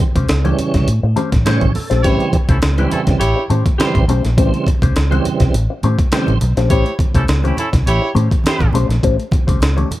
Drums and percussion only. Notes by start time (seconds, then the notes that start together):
0.00 kick, closed hi-hat, high conga
0.16 kick, closed hi-hat
0.29 snare, closed hi-hat, muted conga
0.45 closed hi-hat, high conga
0.59 closed hi-hat, muted conga, low conga
0.74 kick, snare, closed hi-hat
0.87 closed hi-hat, muted conga
1.16 closed hi-hat, high conga
1.32 kick, snare, closed hi-hat
1.46 snare, closed hi-hat, high conga
1.61 kick, closed hi-hat, high conga
1.75 open hi-hat, muted conga, low conga
1.91 snare, closed hi-hat
2.04 kick, closed hi-hat, muted conga
2.20 closed hi-hat
2.33 kick, closed hi-hat, muted conga, high conga
2.49 kick, closed hi-hat
2.62 snare, closed hi-hat, muted conga
2.78 closed hi-hat, high conga
2.91 closed hi-hat, low conga
3.07 kick, snare, closed hi-hat
3.21 closed hi-hat, muted conga
3.50 closed hi-hat, muted conga, high conga
3.66 kick, closed hi-hat
3.80 snare, closed hi-hat, muted conga, high conga
3.95 kick, closed hi-hat, high conga
4.09 closed hi-hat, muted conga, low conga
4.25 snare, closed hi-hat
4.38 kick, closed hi-hat, muted conga
4.54 closed hi-hat
4.67 kick, closed hi-hat, muted conga, high conga
4.82 kick, closed hi-hat
4.96 snare, closed hi-hat, muted conga
5.12 closed hi-hat, high conga
5.25 closed hi-hat, muted conga, low conga
5.40 kick, snare, closed hi-hat
5.54 closed hi-hat
5.83 closed hi-hat, high conga
5.99 kick, closed hi-hat
6.12 snare, closed hi-hat, high conga
6.27 closed hi-hat, high conga
6.41 closed hi-hat, muted conga, low conga
6.57 snare, closed hi-hat
6.70 kick, closed hi-hat, muted conga
6.86 closed hi-hat
6.99 kick, closed hi-hat, high conga
7.15 kick, closed hi-hat
7.28 snare, closed hi-hat, muted conga
7.44 closed hi-hat, high conga
7.57 closed hi-hat, low conga
7.73 kick, snare, closed hi-hat
7.85 closed hi-hat, muted conga
8.15 closed hi-hat, muted conga, high conga
8.31 kick, closed hi-hat
8.44 snare, closed hi-hat, muted conga, high conga
8.59 kick, closed hi-hat, high conga
8.73 closed hi-hat, muted conga, low conga
8.90 snare, closed hi-hat
9.03 kick, closed hi-hat
9.20 closed hi-hat
9.31 kick, closed hi-hat, muted conga, high conga
9.48 kick, closed hi-hat
9.60 snare, closed hi-hat, muted conga
9.77 closed hi-hat, high conga
9.91 closed hi-hat, muted conga, low conga